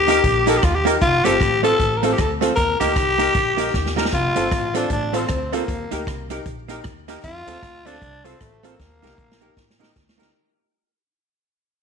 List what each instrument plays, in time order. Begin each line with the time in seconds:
Already playing: upright bass D#2, tenor saxophone G4
0.07 hollow-body jazz guitar A#3 D#4 G4 A#4, upright piano D#4 G4 A#4, closed hi-hat, cabasa
0.24 upright bass A#1, kick, closed hi-hat, cabasa
0.46 hollow-body jazz guitar A#3 D#4 G4 A#4, upright piano D#4 G4 A#4, tenor saxophone A4, closed hi-hat, cabasa
0.57 tenor saxophone G4
0.63 upright bass D#2, tenor saxophone F4, kick, cross-stick, closed hi-hat, cabasa
0.75 tenor saxophone G4
0.85 hollow-body jazz guitar A#3 D#4 G4 A#4, upright piano D#4 G4 A#4, closed hi-hat, cabasa
1.01 upright bass F1, tenor saxophone F4, kick, closed hi-hat, cabasa
1.24 upright bass G1, hollow-body jazz guitar A3 C4 F4 A4, upright piano C4 F4 A4, tenor saxophone G4, closed hi-hat, cabasa
1.41 upright bass A1, kick, cross-stick, closed hi-hat, cabasa
1.63 hollow-body jazz guitar A3 C4 F4 A4, upright piano C4 F4 A4, tenor saxophone A4, closed hi-hat, cabasa
1.79 upright bass A1, kick, closed hi-hat, cabasa
1.97 tenor saxophone A#4
2.02 hollow-body jazz guitar A3 C4 F4 A4, upright piano C4 F4 A4, tenor saxophone A4, closed hi-hat, cabasa
2.13 tenor saxophone G4
2.18 upright bass D2, tenor saxophone A4, kick, cross-stick, closed hi-hat, cabasa
2.41 hollow-body jazz guitar A3 C4 F4 A4, upright piano C4 F4 A4, cross-stick, closed hi-hat, cabasa
2.56 upright bass D#2, tenor saxophone A#4, kick, closed hi-hat, cabasa
2.80 upright bass D2, hollow-body jazz guitar A#3 D#4 G4 A#4, upright piano D#4 G4 A#4, tenor saxophone G4, closed hi-hat, cabasa
2.96 upright bass C2, kick, cross-stick, closed hi-hat, cabasa
3.18 hollow-body jazz guitar A#3 D#4 G4 A#4, upright piano D#4 G4 A#4, closed hi-hat, cabasa
3.34 upright bass A#1, kick, closed hi-hat, cabasa
3.57 hollow-body jazz guitar A#3 D#4 G4 A#4, upright piano D#4 G4 A#4, closed hi-hat, cabasa
3.74 upright bass D#2, kick, snare, cabasa
3.86 snare
3.96 hollow-body jazz guitar A#3 D#4 G4 A#4, upright piano D#4 G4 A#4, snare, cabasa
4.05 snare
4.12 upright bass F1, tenor saxophone F4, kick, closed hi-hat, cabasa
4.35 upright bass G1, hollow-body jazz guitar A3 C4 F4 A4, upright piano C4 F4 A4, closed hi-hat, cabasa
4.51 upright bass A1, kick, cross-stick, closed hi-hat, cabasa
4.74 hollow-body jazz guitar A3 C4 F4 A4, upright piano C4 F4 A4, tenor saxophone D4, closed hi-hat, cabasa
4.90 upright bass A1, tenor saxophone D4, kick, closed hi-hat, cabasa
5.13 hollow-body jazz guitar A3 C4 F4 A4, upright piano C4 F4 A4, tenor saxophone C4, closed hi-hat, cabasa
5.28 upright bass D2, kick, cross-stick, closed hi-hat, cabasa
5.52 hollow-body jazz guitar A3 C4 F4 A4, tenor saxophone A#3, upright piano C4 F4 A4, closed hi-hat, cabasa
5.68 upright bass D#2, kick, closed hi-hat, cabasa
5.91 upright bass D2, hollow-body jazz guitar A#3 D#4 G4 A#4, upright piano D#4 G4 A#4, closed hi-hat, cabasa
6.07 upright bass C2, kick, cross-stick, closed hi-hat, cabasa
6.30 hollow-body jazz guitar A#3 D#4 G4 A#4, upright piano D#4 G4 A#4, closed hi-hat, cabasa
6.46 upright bass A#1, kick, closed hi-hat, cabasa
6.68 hollow-body jazz guitar A#3 D#4 G4 A#4, upright piano D#4 G4 A#4, closed hi-hat, cabasa
6.84 upright bass D#2, kick, cross-stick, closed hi-hat, cabasa
7.08 hollow-body jazz guitar A#3 D#4 G4 A#4, upright piano D#4 G4 A#4, cross-stick, closed hi-hat, cabasa
7.24 upright bass F2, tenor saxophone F4, kick, closed hi-hat, cabasa
7.47 upright bass D#2, hollow-body jazz guitar A3 C4 F4 A4, upright piano C4 F4 A4, closed hi-hat, cabasa
7.63 upright bass D2, kick, cross-stick, closed hi-hat, cabasa
7.85 hollow-body jazz guitar A3 C4 F4 A4, upright piano C4 F4 A4, tenor saxophone D4, closed hi-hat, cabasa
7.94 cross-stick
8.02 upright bass C2, kick, closed hi-hat, cabasa
8.24 hollow-body jazz guitar A3 C4 F4 A4, upright piano C4 F4 A4, tenor saxophone C4, closed hi-hat, cabasa
8.40 upright bass A1, tenor saxophone A3, kick, cross-stick, closed hi-hat, cabasa
8.63 hollow-body jazz guitar A3 C4 F4 A4, tenor saxophone A#3, upright piano C4 F4 A4, closed hi-hat, cabasa
8.79 upright bass D#2, kick, snare, cabasa
9.02 upright bass C2, hollow-body jazz guitar A#3 D#4 G4 A#4, upright piano D#4 G4 A#4, snare, cabasa
9.18 upright bass A#1, kick, cabasa
9.32 snare
9.41 hollow-body jazz guitar A#3 D#4 G4 A#4, upright piano D#4 G4 A#4, cabasa
9.57 upright bass A1, kick, snare, cabasa
9.70 snare
9.79 hollow-body jazz guitar A#3 D#4 G4 A#4, upright piano D#4 G4 A#4, snare, cabasa
9.96 upright bass D2, kick, snare, cabasa
10.09 snare
10.18 hollow-body jazz guitar A#3 D#4 G4 A#4, upright piano D#4 G4 A#4, snare, cabasa